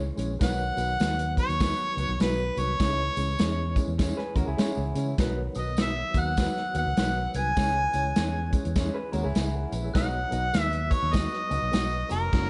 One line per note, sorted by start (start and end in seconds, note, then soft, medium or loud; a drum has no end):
0.00 0.39 E3 medium
0.00 0.38 G#3 medium
0.00 0.38 C#4 medium
0.00 0.36 G#5 medium
0.16 0.36 A#1 medium
0.16 0.29 G#3 medium
0.16 0.29 C#4 medium
0.16 0.30 E4 medium
0.16 0.30 C#5 medium
0.16 closed hi-hat medium
0.16 tambourine medium
0.39 0.70 B1 loud
0.39 2.78 D#3 medium
0.39 0.59 F#3 medium
0.39 2.78 F#3 medium
0.39 0.59 B3 medium
0.39 2.78 B3 medium
0.39 0.59 D#4 medium
0.39 0.60 B4 loud
0.39 1.35 F#5 loud
0.39 kick medium
0.39 snare medium
0.39 closed hi-hat medium
0.39 tambourine medium
0.77 0.95 B1 medium
0.77 0.89 F#3 medium
0.77 0.89 B3 medium
0.77 0.90 D#4 medium
0.77 0.90 B4 medium
0.77 closed hi-hat medium
0.77 tambourine medium
1.00 1.38 D#2 medium
1.00 1.19 F#3 medium
1.00 1.19 B3 medium
1.00 1.20 D#4 medium
1.00 1.20 B4 medium
1.00 snare loud
1.00 closed hi-hat medium
1.00 tambourine loud
1.19 closed hi-hat medium
1.37 1.49 F#3 medium
1.37 1.50 B3 medium
1.37 1.50 D#4 medium
1.37 1.50 B4 medium
1.37 2.17 C#5 medium
1.37 kick medium
1.37 closed hi-hat medium
1.37 tambourine soft
1.49 1.72 D#2 medium
1.49 closed hi-hat medium
1.60 1.79 F#3 medium
1.60 1.80 B3 medium
1.60 1.80 D#4 medium
1.60 1.80 B4 loud
1.60 kick medium
1.60 snare loud
1.60 closed hi-hat medium
1.60 tambourine loud
1.97 2.06 C#2 medium
1.97 2.09 F#3 medium
1.97 2.09 B3 medium
1.97 2.09 D#4 medium
1.97 2.10 B4 medium
1.97 closed hi-hat medium
1.97 tambourine soft
2.09 2.18 B1 medium
2.20 2.49 B1 medium
2.20 2.39 F#3 medium
2.20 2.39 B3 medium
2.20 2.39 D#4 medium
2.20 2.60 B4 medium
2.20 2.40 B4 medium
2.20 snare loud
2.20 closed hi-hat medium
2.20 tambourine medium
2.57 2.75 C2 medium
2.57 2.69 F#3 medium
2.57 2.69 B3 medium
2.57 2.69 D#4 medium
2.57 2.70 B4 medium
2.57 3.77 C#5 medium
2.57 closed hi-hat medium
2.57 tambourine soft
2.79 3.09 C#2 medium
2.79 5.16 E3 medium
2.79 5.16 G#3 medium
2.79 2.99 G#3 medium
2.79 5.16 C#4 medium
2.79 2.99 C#4 medium
2.79 2.99 E4 medium
2.79 2.99 C#5 loud
2.79 kick medium
2.79 snare loud
2.79 closed hi-hat medium
2.79 tambourine medium
3.16 3.35 C#2 medium
3.16 3.28 G#3 medium
3.16 3.29 C#4 medium
3.16 3.29 E4 medium
3.16 3.29 C#5 medium
3.16 closed hi-hat medium
3.16 tambourine medium
3.39 3.77 E2 medium
3.39 3.58 G#3 medium
3.39 3.58 C#4 medium
3.39 3.59 E4 medium
3.39 3.59 C#5 medium
3.39 snare loud
3.39 closed hi-hat medium
3.39 tambourine loud
3.76 3.88 G#3 medium
3.76 3.88 C#4 medium
3.76 3.88 E4 medium
3.76 3.89 C#5 medium
3.76 kick medium
3.76 closed hi-hat medium
3.76 tambourine soft
3.88 4.11 E2 medium
3.98 4.17 G#3 loud
3.98 4.18 C#4 medium
3.98 4.18 E4 loud
3.98 4.18 C#5 loud
3.98 kick medium
3.98 snare loud
3.98 closed hi-hat medium
3.98 tambourine medium
4.17 4.35 G#4 medium
4.17 4.35 B4 medium
4.17 snare soft
4.35 4.45 D#2 medium
4.35 4.47 G#3 medium
4.35 4.47 C#4 medium
4.35 4.48 E4 medium
4.35 4.47 F#4 medium
4.35 4.47 A#4 medium
4.35 4.48 C#5 medium
4.35 kick medium
4.35 closed hi-hat medium
4.35 tambourine soft
4.47 4.56 C#2 medium
4.47 5.15 E4 medium
4.47 5.15 G#4 medium
4.57 4.77 G#3 loud
4.57 4.77 C#4 medium
4.57 4.77 E4 medium
4.57 4.78 C#5 loud
4.57 snare loud
4.57 closed hi-hat medium
4.57 tambourine medium
4.77 4.92 C#2 medium
4.95 5.13 C#3 medium
4.95 5.07 G#3 medium
4.95 5.07 C#4 medium
4.95 5.07 E4 medium
4.95 5.08 C#5 medium
4.95 closed hi-hat medium
4.95 tambourine medium
5.18 5.47 B1 loud
5.18 7.54 D#3 medium
5.18 5.37 F#3 loud
5.18 7.54 F#3 medium
5.18 7.54 B3 medium
5.18 5.37 B3 medium
5.18 5.38 D#4 medium
5.18 5.38 B4 loud
5.18 kick medium
5.18 snare loud
5.18 closed hi-hat medium
5.18 tambourine medium
5.55 6.02 B1 medium
5.55 5.67 F#3 medium
5.55 5.67 B3 medium
5.55 5.67 D#4 medium
5.55 5.67 B4 medium
5.55 5.78 D#5 medium
5.55 5.77 D#6 medium
5.55 closed hi-hat medium
5.55 tambourine medium
5.77 5.97 F#3 medium
5.77 5.97 B3 medium
5.77 5.97 D#4 medium
5.77 5.98 B4 medium
5.77 6.13 E6 medium
5.77 snare loud
5.77 closed hi-hat medium
5.77 tambourine loud
5.81 6.21 E5 medium
6.14 6.47 D#2 medium
6.14 6.27 F#3 medium
6.14 6.27 B3 medium
6.14 6.27 D#4 medium
6.14 6.27 A#4 medium
6.14 6.75 F#6 medium
6.14 kick medium
6.14 closed hi-hat medium
6.14 tambourine soft
6.19 6.77 F#5 medium
6.37 6.57 F#3 medium
6.37 6.57 B3 medium
6.37 6.57 D#4 medium
6.37 6.57 B4 medium
6.37 kick medium
6.37 snare loud
6.37 closed hi-hat medium
6.37 tambourine loud
6.57 snare soft
6.74 6.84 D#2 medium
6.74 6.86 F#3 medium
6.74 6.86 B3 medium
6.74 6.86 D#4 medium
6.74 6.87 B4 medium
6.74 7.31 F#6 medium
6.74 closed hi-hat medium
6.74 tambourine soft
6.78 7.32 F#5 loud
6.86 6.95 C#2 loud
6.97 7.26 B1 medium
6.97 7.16 F#3 medium
6.97 7.16 B3 medium
6.97 7.16 D#4 medium
6.97 7.17 B4 loud
6.97 snare loud
6.97 closed hi-hat medium
6.97 tambourine medium
7.34 7.52 C2 medium
7.34 7.46 F#3 medium
7.34 7.46 B3 medium
7.34 7.46 D#4 medium
7.34 7.47 B4 medium
7.34 8.51 G#5 loud
7.34 8.50 G#6 medium
7.34 closed hi-hat medium
7.34 tambourine medium
7.56 7.86 C#2 loud
7.56 9.92 E3 medium
7.56 9.92 G#3 medium
7.56 7.76 G#3 medium
7.56 9.92 C#4 medium
7.56 7.76 C#4 medium
7.56 7.76 E4 medium
7.56 7.76 C#5 medium
7.56 kick medium
7.56 snare loud
7.56 closed hi-hat medium
7.56 tambourine medium
7.93 8.12 C#2 medium
7.93 8.05 G#3 medium
7.93 8.05 C#4 medium
7.93 8.06 E4 medium
7.93 8.06 C#5 medium
7.93 closed hi-hat medium
7.93 tambourine medium
8.16 8.54 E2 medium
8.16 8.35 G#3 medium
8.16 8.35 C#4 medium
8.16 8.36 E4 medium
8.16 8.36 C#5 medium
8.16 snare loud
8.16 closed hi-hat medium
8.16 tambourine loud
8.52 8.64 G#3 medium
8.52 8.65 C#4 medium
8.52 8.65 E4 medium
8.52 8.65 C#5 medium
8.52 kick medium
8.52 closed hi-hat medium
8.52 tambourine soft
8.65 8.88 E2 medium
8.65 closed hi-hat medium
8.76 8.95 G#3 loud
8.76 8.95 C#4 medium
8.76 8.95 E4 loud
8.76 8.95 C#5 loud
8.76 kick medium
8.76 snare loud
8.76 closed hi-hat medium
8.76 tambourine loud
8.94 9.12 G#4 medium
8.94 9.12 B4 medium
9.12 9.22 D#2 medium
9.12 9.24 G#3 loud
9.12 9.24 C#4 medium
9.12 9.25 E4 medium
9.12 9.24 F#4 medium
9.12 9.23 A#4 medium
9.12 9.25 C#5 medium
9.12 closed hi-hat medium
9.12 tambourine soft
9.24 9.33 C#2 medium
9.24 9.92 E4 medium
9.24 9.91 G#4 medium
9.35 9.64 C#2 medium
9.35 snare loud
9.35 closed hi-hat medium
9.35 tambourine medium
9.54 9.72 A#4 medium
9.54 9.72 F#5 medium
9.72 9.90 A#1 medium
9.72 9.84 B4 medium
9.72 9.83 G#5 medium
9.72 closed hi-hat medium
9.72 tambourine medium
9.84 10.12 G#4 medium
9.84 10.12 E5 medium
9.94 10.24 B1 medium
9.94 12.50 F#3 medium
9.94 10.13 B3 medium
9.94 12.30 B3 medium
9.94 10.13 D#4 medium
9.94 12.30 D#4 medium
9.94 10.14 F#4 medium
9.94 10.14 D#5 loud
9.94 10.61 F#5 loud
9.94 10.87 F#6 medium
9.94 kick medium
9.94 snare loud
9.94 closed hi-hat medium
9.94 tambourine medium
10.31 10.50 B1 medium
10.31 10.43 B3 medium
10.31 10.43 D#4 medium
10.31 10.43 F#4 medium
10.31 10.44 D#5 medium
10.31 closed hi-hat medium
10.31 tambourine medium
10.53 10.92 D#2 medium
10.53 10.73 B3 medium
10.53 10.73 D#4 medium
10.53 10.73 F#4 medium
10.53 10.74 D#5 medium
10.53 snare loud
10.53 closed hi-hat loud
10.53 tambourine loud
10.61 10.94 E5 loud
10.73 closed hi-hat medium
10.90 11.02 B3 medium
10.90 11.03 D#4 medium
10.90 11.03 F#4 medium
10.90 11.15 C#5 medium
10.90 11.03 D#5 medium
10.90 11.14 C#6 medium
10.90 kick medium
10.90 closed hi-hat medium
10.90 tambourine soft
11.03 11.26 D#2 medium
11.12 11.32 B3 loud
11.12 11.32 D#4 medium
11.12 11.33 F#4 medium
11.12 12.10 D#5 medium
11.12 11.33 D#5 loud
11.12 12.10 D#6 medium
11.12 kick medium
11.12 snare loud
11.12 closed hi-hat medium
11.12 tambourine loud
11.33 snare soft
11.49 11.60 C#2 medium
11.49 11.62 B3 medium
11.49 11.62 D#4 medium
11.49 11.62 F#4 medium
11.49 11.62 D#5 medium
11.49 closed hi-hat medium
11.49 tambourine soft
11.62 11.71 B1 medium
11.72 12.02 B1 loud
11.72 11.91 B3 medium
11.72 11.92 D#4 medium
11.72 11.92 F#4 medium
11.72 11.92 D#5 loud
11.72 snare loud
11.72 closed hi-hat medium
11.72 tambourine medium
12.09 12.28 F1 medium
12.09 12.21 B3 medium
12.09 12.22 D#4 medium
12.09 12.22 F#4 medium
12.09 12.50 A#4 medium
12.09 12.22 D#5 medium
12.09 12.31 A#5 medium
12.09 closed hi-hat medium
12.09 tambourine medium
12.32 12.50 F#1 medium
12.32 12.50 A#3 medium
12.32 12.50 C#4 medium
12.32 12.50 F#4 medium
12.32 12.50 C#5 medium
12.32 kick loud
12.32 snare medium
12.32 crash medium